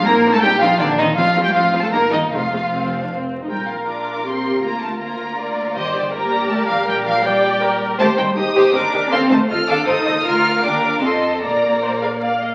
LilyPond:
<<
  \new Staff \with { instrumentName = "Violin section" } { \time 3/4 \key bes \major \tempo 4 = 160 bes''8. a''16 g''8 f''8 d''8 ees''8 | f''8. g''16 f''8. a''16 bes''8 ees''8 | f''2 r4 | g''8 f''8 d'''4 c'''4 |
bes''8 a''8 bes''4. r8 | ees''8 d''8 bes''4 a''8 f''8 | g''8 f''8 g''4. r8 | a''8 g''8 ees'''4 d'''4 |
c'''8 a''8 f'''8 d'''8 ees'''4 | f'''4 d'''4 c'''4 | bes''4. f''8 d''8 ees''8 | }
  \new Staff \with { instrumentName = "Violin section" } { \time 3/4 \key bes \major << { bes'8. a'16 g'8 f'8 d'8 ees'8 | f'8. g'16 f'8. a'16 bes'8 ees'8 | f'2 r4 | bes'4 bes'2 |
bes'4 bes'2 | d''4 d''2 | d''4 d''2 | c''8 ees'8 g'8 c''8 ees'8 g'8 |
f''8 c''8 ees''8 f''8 c''8 ees''8 | f''4 g''8 f''8 ees''4 | d''2~ d''8 r8 | } \\ { r2. | r2. | r2. | f'4 f'2 |
f'4 f'2 | g'4 g'2 | g'4 g'2 | g'8 c'8 ees'8 g'8 c'8 ees'8 |
a'8 ees'8 f'8 a'8 ees'8 f'8 | bes'4 bes'4 a'4 | bes'2~ bes'8 r8 | } >> }
  \new Staff \with { instrumentName = "Viola section" } { \time 3/4 \key bes \major <c' ees'>8 <c' ees'>8 <c' ees'>8 <c' ees'>8 <c' ees'>8 <c' ees'>8 | <c' f'>8 <c' f'>8 <c' f'>8 <c' f'>8 <bes ees'>8 <bes ees'>8 | <a c'>8 <a c'>8 c'8. d'16 c'8. ees'16 | bes'2 g'4 |
f'2 d''4 | c''4 bes'2~ | bes'4 d''4 bes'4 | c''4 g'4 bes'4 |
c''4 a'2 | bes'4 bes'4 a'4 | d''4 c''8 bes'8 f''4 | }
  \new Staff \with { instrumentName = "Cello section" } { \time 3/4 \key bes \major bes8. a16 g8 f8 d8 ees8 | f8. g16 f8. a16 bes8 ees8 | f2 r4 | g8 f8 d'4 c'4 |
bes8 a8 bes4. r8 | ees8 d8 bes4 a8 f8 | g8 f8 g4. r8 | a8 g8 ees'4 d'4 |
c'8 a8 f'8 d'8 ees'4 | f'4 d'4 c'4 | bes2~ bes8 r8 | }
  \new Staff \with { instrumentName = "Double bass section" } { \clef bass \time 3/4 \key bes \major bes,,4 bes,,4 bes,,4 | a,,4 a,,4 g,,4 | f,,4 f,,4 f,,4 | bes,,2. |
d,2. | g,,2. | bes,,2. | ees,8 ees,8 ees,8 ees,8 ees,8 ees,8 |
ees,8 ees,8 ees,8 ees,8 ees,8 ees,8 | d,4 ees,4 f,4 | bes,,2~ bes,,8 r8 | }
>>